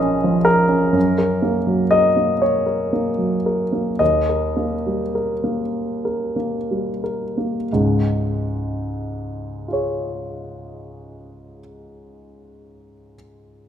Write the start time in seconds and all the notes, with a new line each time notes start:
Already playing: A#1 F3 A#4 D#5 F5
0.00 C#4
0.24 F3
0.45 A#4
0.68 C#4
0.93 F#2
1.18 A#4
1.42 A#3
1.67 F#3
1.91 A#4 D#5
2.16 A#3
2.42 C#5
2.66 A#4
2.93 A#3
3.18 F#3
3.46 A#4
3.73 A#3
3.99 D#2 D#5
4.29 A#4
4.57 A#3
4.87 G3
5.15 A#4
5.44 A#3
6.05 A#4
6.36 A#3
6.71 G3
7.04 A#4
7.38 A#3
7.73 C#2 G#2
9.68 F4 G#4
9.73 C#5